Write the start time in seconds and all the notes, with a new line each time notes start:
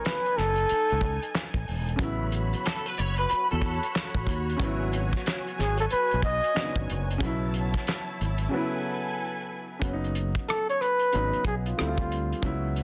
Already playing: C#3 F#3 B3 D#4 A4 G#5
0.05 B4, snare, clap, closed hi-hat
0.26 closed hi-hat
0.37 F#1 A4, snare, closed hi-hat
0.56 closed hi-hat
0.69 muted fretless electric bass stroke, closed hi-hat
0.90 C#2, closed hi-hat
1.01 kick, closed hi-hat
1.23 closed hi-hat
1.35 snare, clap, closed hi-hat
1.54 A1, kick, closed hi-hat
1.68 E1, open hi-hat
1.89 closed hi-hat
1.96 C#3 F#3 F#4 C#5 B5, kick, closed hi-hat
2.00 A1 B3 E4
2.32 closed hi-hat
2.53 closed hi-hat
2.66 A4, snare, clap, closed hi-hat
2.86 B4
2.98 F#1 C#5, closed hi-hat
3.16 B4, closed hi-hat
3.30 muted fretless electric bass stroke, closed hi-hat
3.51 E2 A4
3.62 kick, closed hi-hat
3.83 closed hi-hat
3.96 snare, clap, closed hi-hat
4.15 A1, kick, closed hi-hat
4.27 D#2, kick, closed hi-hat
4.50 closed hi-hat
4.57 C#3 F#3 G#5, kick
4.61 G#1 B3 E4, closed hi-hat
4.93 closed hi-hat
5.13 kick, snare, closed hi-hat
5.26 snare, clap, closed hi-hat
5.47 closed hi-hat
5.59 G#1 G#4, snare, closed hi-hat
5.78 A4, closed hi-hat
5.91 B4, muted fretless electric bass stroke, closed hi-hat
6.11 B1, closed hi-hat
6.22 D#5, kick, closed hi-hat
6.44 closed hi-hat
6.54 C#3 F#3 B3 D4, snare, clap, closed hi-hat
6.65 D#4
6.76 G#1, kick
6.90 F#1, closed hi-hat
7.11 closed hi-hat
7.18 B1 C#3 F#3 E4 C#5 A5, kick, closed hi-hat
7.23 B3 E4
7.54 closed hi-hat
7.74 kick, snare, closed hi-hat
7.87 snare, clap, closed hi-hat
8.21 G#1, closed hi-hat
8.38 closed hi-hat
8.49 C#3 F#3 A4 B4 G#5
8.54 B3 E4
9.79 F#1 C#3 F#3, kick, closed hi-hat
9.84 B3 C#4
9.93 D#4
10.04 closed hi-hat
10.15 closed hi-hat
10.35 kick, cross-stick, closed hi-hat
10.48 A4, cross-stick, closed hi-hat
10.70 C#5, closed hi-hat
10.81 B4, cross-stick, closed hi-hat
10.99 closed hi-hat
11.12 G#1 C#3 F#3 B3 D#4, closed hi-hat
11.33 muted fretless electric bass stroke, closed hi-hat
11.45 B1 G#4, kick, closed hi-hat
11.66 F4, closed hi-hat
11.77 D2 D3 G3 C4 E4, cross-stick, closed hi-hat
11.88 F4
11.98 kick, closed hi-hat
12.12 closed hi-hat
12.33 closed hi-hat
12.42 C#2 C#3 F#3 B3 E4, kick, closed hi-hat
12.76 closed hi-hat